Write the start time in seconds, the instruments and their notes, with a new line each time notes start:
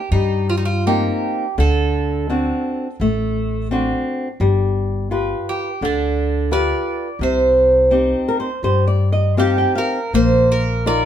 Already playing: bouzouki G4
0.11 upright bass G2, nylon-string guitar G3, bouzouki D#4
0.49 bouzouki F4
0.57 bouzouki D#4
0.65 bouzouki F4
0.86 nylon-string guitar A#3 C4 D#4, bouzouki G4
1.58 upright bass D2, nylon-string guitar D3, bouzouki A4
2.30 nylon-string guitar C4 D4 F#4
3.00 upright bass A1, nylon-string guitar A3
3.71 nylon-string guitar C4 D4 F#4
4.40 upright bass G1, nylon-string guitar G3
5.11 nylon-string guitar F4 G4 B4
5.49 bouzouki G4
5.81 upright bass D2, nylon-string guitar D3, bouzouki D4
6.51 nylon-string guitar F4 G4 B4, bouzouki D5
7.19 upright bass C2, nylon-string guitar C3, bouzouki C5
7.91 nylon-string guitar C4 D#4 G4
8.28 nylon-string guitar A#4
8.40 nylon-string guitar C5
8.63 upright bass G2, nylon-string guitar G3 C5
8.87 nylon-string guitar D5
9.12 nylon-string guitar D#5
9.37 nylon-string guitar C4 D#4 G4 F5, bouzouki G4
9.58 nylon-string guitar G5
9.75 bouzouki A#4, nylon-string guitar F5
10.13 upright bass A#1, nylon-string guitar A#3, bouzouki C5
10.52 bouzouki A#4
10.86 nylon-string guitar D#4 F4 A#4, bouzouki D5